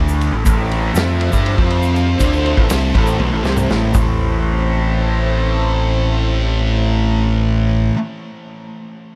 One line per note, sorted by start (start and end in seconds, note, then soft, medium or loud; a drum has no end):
0.00 0.30 D2 loud
0.00 0.32 D3 loud
0.00 0.32 A3 medium
0.00 0.32 D4 loud
0.08 shaker medium
0.21 ride medium
0.21 shaker soft
0.33 0.44 A1 medium
0.33 0.44 A2 medium
0.33 0.44 E3 medium
0.44 0.92 A1 medium
0.44 0.94 A2 medium
0.44 0.94 E3 loud
0.44 1.56 A3 medium
0.44 0.95 A3 medium
0.44 3.90 C4 medium
0.44 1.56 A4 medium
0.44 3.90 C5 medium
0.44 1.55 E5 medium
0.44 kick loud
0.44 ride loud
0.44 shaker loud
0.72 ride medium
0.94 1.29 F2 medium
0.94 1.31 F3 medium
0.94 1.31 C4 medium
0.94 1.32 F4 medium
0.94 snare loud
0.94 ride medium
0.94 shaker loud
1.21 ride medium
1.32 1.56 G2 loud
1.32 1.56 G3 medium
1.32 1.56 D4 medium
1.32 1.57 G4 medium
1.32 kick loud
1.32 shaker medium
1.46 ride medium
1.57 2.16 F2 medium
1.57 2.19 F3 medium
1.57 2.19 C4 medium
1.57 2.19 F4 medium
1.57 2.20 F4 medium
1.57 2.19 F5 medium
1.57 kick loud
1.70 ride medium
1.82 shaker medium
1.96 ride medium
1.96 shaker soft
2.19 2.55 D2 medium
2.19 2.56 D3 medium
2.19 3.92 A3 medium
2.19 2.57 A3 medium
2.19 2.57 D4 loud
2.19 3.92 E4 medium
2.19 3.92 A4 medium
2.19 kick loud
2.19 ride loud
2.19 shaker loud
2.33 shaker soft
2.46 ride medium
2.57 2.69 A1 loud
2.57 2.69 A2 medium
2.57 2.69 E3 loud
2.57 kick loud
2.70 2.93 C2 medium
2.70 2.94 C3 medium
2.70 2.94 G3 medium
2.70 2.94 C4 loud
2.70 snare loud
2.70 ride loud
2.70 shaker loud
2.94 3.18 A1 loud
2.94 3.19 A2 medium
2.94 3.19 E3 loud
2.94 3.19 A3 medium
2.94 kick loud
2.94 ride medium
3.07 shaker medium
3.19 3.31 B1 loud
3.19 3.31 B2 loud
3.19 3.31 F#3 medium
3.19 high tom medium
3.32 3.43 A1 medium
3.32 3.43 A2 medium
3.32 3.44 E3 medium
3.44 3.67 C2 medium
3.44 3.68 C3 medium
3.44 3.68 G3 medium
3.44 3.69 C4 medium
3.44 snare medium
3.44 shaker soft
3.57 mid tom medium
3.57 shaker medium
3.70 3.93 A1 medium
3.70 3.92 A2 medium
3.70 3.94 E3 medium
3.70 3.94 A3 loud
3.70 snare medium
3.70 shaker soft
3.93 7.91 A1 medium
3.93 7.94 A2 medium
3.93 7.96 E3 medium
3.93 7.90 A3 medium
3.93 7.90 C4 medium
3.93 7.90 E4 medium
3.93 7.90 A4 medium
3.93 7.91 C5 medium
3.93 kick loud
3.93 floor tom loud
3.93 shaker medium
3.97 7.98 A3 loud